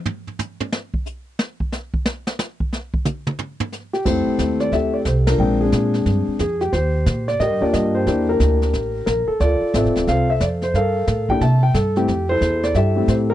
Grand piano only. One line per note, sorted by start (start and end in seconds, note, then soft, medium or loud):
3.93 4.04 G4 medium
4.05 4.98 A3 medium
4.05 4.98 C4 medium
4.05 4.99 E4 medium
4.05 4.73 G4 medium
4.05 4.70 A4 medium
4.05 4.62 C5 medium
4.60 4.73 D5 medium
4.73 5.36 G4 medium
4.73 5.36 A4 medium
4.73 4.95 E5 medium
4.94 4.99 D5 medium
5.07 5.12 C5 medium
5.27 5.38 D4 medium
5.27 5.91 F4 medium
5.27 5.58 A#4 medium
5.39 6.32 G#3 medium
5.39 5.61 C4 medium
5.39 5.61 D4 medium
5.39 6.33 G5 medium
5.61 6.37 C4 medium
5.61 6.36 D4 medium
5.61 6.36 G#4 medium
6.40 6.60 G#4 medium
6.61 6.73 G4 medium
6.72 7.37 G4 medium
6.72 7.24 C5 medium
7.28 7.40 D5 medium
7.40 7.60 G4 medium
7.40 8.04 A#4 medium
7.40 7.62 D#5 medium
7.61 8.04 A#3 medium
7.61 8.04 D4 medium
7.61 8.05 F4 medium
7.61 7.95 G4 medium
7.61 7.73 D5 medium
7.73 7.95 D#5 medium
7.95 8.06 G4 medium
7.95 8.29 C5 medium
8.07 8.57 A#3 medium
8.07 8.29 D4 medium
8.07 8.58 E4 medium
8.07 8.29 G4 medium
8.29 8.72 D4 medium
8.29 9.04 G4 medium
8.29 9.05 A#4 medium
9.06 9.27 A#4 medium
9.28 9.39 A4 medium
9.41 9.75 F4 medium
9.41 9.74 A4 medium
9.41 10.09 D5 medium
9.75 10.25 C4 medium
9.75 10.26 F4 medium
9.75 10.09 A4 medium
9.75 10.25 E5 medium
10.08 10.72 A4 medium
10.08 10.62 C5 medium
10.08 10.30 F5 loud
10.30 10.42 E5 medium
10.42 10.47 D5 medium
10.63 10.75 C5 medium
10.76 11.39 A4 medium
10.76 11.38 A#4 medium
10.76 11.31 F5 medium
11.30 11.40 A#3 medium
11.30 11.40 D4 medium
11.30 11.41 E4 medium
11.30 11.41 G4 medium
11.30 11.42 G5 loud
11.41 12.05 E5 medium
11.41 11.61 A5 loud
11.63 11.75 G5 medium
11.74 11.96 A4 medium
11.97 12.07 A3 medium
11.97 12.07 C4 medium
11.97 12.07 E4 medium
11.97 12.31 G4 medium
12.29 12.93 E4 medium
12.29 12.75 A4 medium
12.29 12.64 C5 loud
12.64 12.76 D5 medium
12.76 12.95 G4 medium
12.76 13.34 A4 medium
12.76 13.09 E5 medium
12.96 13.34 A3 medium
12.96 13.34 C4 medium
12.96 13.30 E4 medium
12.96 13.31 G4 medium
13.09 13.14 C5 medium
13.30 13.34 A#4 loud